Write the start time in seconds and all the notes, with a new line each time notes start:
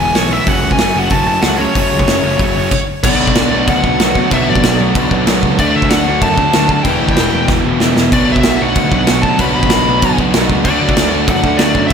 Already playing: E2 B2 E3 G#3 B3 E4 G#5
0.00 E1
0.15 B1 E2 B2 E3 G#3 B3 E4 C#5, snare, open hi-hat
0.31 E2 B2 E3 G#3 B3 E4 E5
0.47 F#1 F#2 C#3 F#3 A3 C#4 F#5, kick, open hi-hat
0.64 C#2
0.71 G#5, kick
0.78 F#1 F#2 C#3 F#3 A3, snare, open hi-hat
0.83 C#4
0.95 F#1 F#3 A3 C#4 F#5
0.99 F#2 C#3
1.10 F#1 F#2 C#3 F#3 A5, kick, open hi-hat
1.14 A3 C#4
1.26 F#1 A5
1.42 C#2 F#2 C#3 F#3 F#5, snare, open hi-hat
1.46 A3 C#4
1.57 A3 C#4 C#5
1.61 F#2 C#3 F#3
1.74 F#1 F#2 C#3 F#3 A3 C#4, kick, open hi-hat
1.92 C#2
1.99 kick
2.06 F#1 F#2 C#3 F#3 A3 C#4, snare, open hi-hat
2.23 F#1 F#2 C#3 F#3 A3 C#4
2.39 F#1 F#2 C#3 F#3 A3 C#4, kick, open hi-hat
2.56 F#1
2.71 kick, crash
3.04 B1 B2 F#3 B3 D4 F#4 D5, kick, crash
3.20 B1
3.27 kick
3.35 B1, snare, crash
3.52 B1 F#3 B3 D4 F#4
3.56 B2
3.68 D2 F#5, kick, crash
3.83 B1 B2 F#3 B3, kick
3.99 B1 B2 F#3 B3 D4, snare, crash
4.03 F#4
4.15 B2, kick
4.31 B1 B2 F#3 B3 D4 E5, kick, crash
4.35 F#4
4.48 A1 D5
4.55 kick
4.63 B1, snare, crash
4.80 B1 B2 F#3 B3 D4 F#4
4.95 B1, kick, crash
5.10 B1 B2 F#3 B3, kick
5.27 B1 B2 F#3 B3 D4 F#4, snare, crash
5.43 C#2, kick
5.59 D2 D3 F#3 A3 D4 F#4 D5, kick, crash
5.75 D2 E5
5.82 kick
5.89 D2 F#5, snare, crash
6.05 D2 F#3 A3 D4 F#4
6.09 D3
6.22 F#2 A5, kick, crash
6.37 D2 D3 A3 D4, kick
6.52 D2 D3 F#3 A3 D4 F#4, snare, crash
6.69 D3 A5, kick
6.83 E1 E2 B2 E3 B3 E4 G5, kick, crash
6.88 E3 G4
7.02 D2
7.09 kick
7.16 E1, snare, crash
7.31 E1 E3 B3 E4 G4
7.48 E1, kick, snare
7.65 E1 E2 B2 E3
7.79 E1 E2 B2 E3 B3 E4 G4, snare
7.84 E3
7.96 E1, snare
8.12 B1 B2 F#3 B3 D4 F#4 D5, kick, crash
8.28 B1
8.32 E5, kick
8.43 B1, snare, crash
8.59 B1 B2 F#3 B3 D4 F#4 F#5
8.75 D2, kick, crash
8.91 B1 B2 F#3 B3 F#5, kick
9.07 B1 B2 F#3 B3 D4, snare, crash
9.11 F#4
9.23 B2 A5, kick
9.39 B1 B2 F#3 B3 D4 F#4 B5, kick, crash
9.55 A1 B5
9.63 kick
9.70 B1, snare, crash
9.87 B1 B2 F#3 B3 D4 F#4
10.02 B1, kick, crash
10.18 B1 B2 F#3 B3, kick
10.33 B1 B2 F#3 B3 D4, snare, crash
10.37 F#4
10.50 C#2, kick
10.65 D2 D3 F#3 A3 D4 D5, kick, crash
10.69 F#4
10.81 D2
10.89 kick
10.97 D2, snare, crash
11.13 D2 D3 F#3 A3 D4 F#4
11.28 F#2 F#5, kick, crash
11.43 D2 D3 A3 D4, kick
11.57 D2 D3 F#3 A3 D5, snare, crash
11.62 D4 F#4
11.75 F#2, kick
11.87 E2 E5, crash